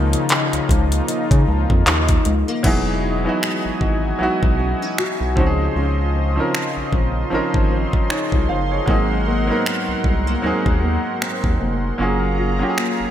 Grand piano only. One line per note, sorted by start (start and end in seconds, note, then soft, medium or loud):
0.00 0.66 D#3 medium
0.00 0.66 F3 medium
0.00 0.66 A#3 medium
2.63 3.04 F#3 medium
2.63 3.04 B3 medium
2.63 3.05 D#4 medium
2.63 3.05 E4 medium
2.67 3.06 G#4 medium
3.25 3.90 F#3 medium
3.25 3.90 B3 medium
3.25 3.91 D#4 medium
3.25 3.92 E4 medium
3.29 3.92 F#4 medium
4.19 5.27 F#3 medium
4.19 5.28 B3 medium
4.19 5.29 D#4 medium
4.19 5.29 E4 medium
4.23 5.30 F#4 medium
5.36 6.14 F3 medium
5.36 6.15 C4 medium
5.36 6.15 C#4 medium
5.36 6.16 D#4 medium
5.40 5.46 F#4 medium
5.46 6.20 G#4 medium
6.36 7.01 F3 medium
6.36 7.02 C4 medium
6.36 7.02 C#4 medium
6.36 7.03 D#4 medium
6.40 7.03 A#4 medium
7.30 8.39 F3 medium
7.30 8.40 C4 medium
7.30 8.40 C#4 medium
7.30 8.41 D#4 medium
7.34 8.11 A#4 medium
8.10 8.47 G#4 medium
8.10 8.47 C#5 medium
8.49 8.71 C5 medium
8.49 8.70 F5 medium
8.71 8.88 G#4 medium
8.71 9.08 C#5 medium
8.86 9.27 F#3 medium
8.86 9.27 A#3 medium
8.86 9.28 C4 medium
8.86 9.28 D#4 medium
8.90 9.29 G#4 medium
9.47 10.13 F#3 medium
9.47 10.13 A#3 medium
9.47 9.53 B3 medium
9.47 10.15 D#4 medium
9.52 10.15 A#4 medium
9.56 10.17 C4 medium
10.42 11.51 F#3 medium
10.42 11.51 A#3 medium
10.42 11.52 C4 medium
10.42 11.52 D#4 medium
10.46 11.53 G#4 medium
11.98 12.39 F#3 medium
11.98 12.39 A#3 medium
11.98 12.40 C#4 medium
11.98 12.40 F4 medium
12.02 12.41 G#4 medium
12.59 13.11 F#3 medium
12.59 13.11 A#3 medium
12.59 13.11 C#4 medium
12.59 13.11 F4 medium
12.63 12.65 G4 medium
12.70 13.11 G#4 medium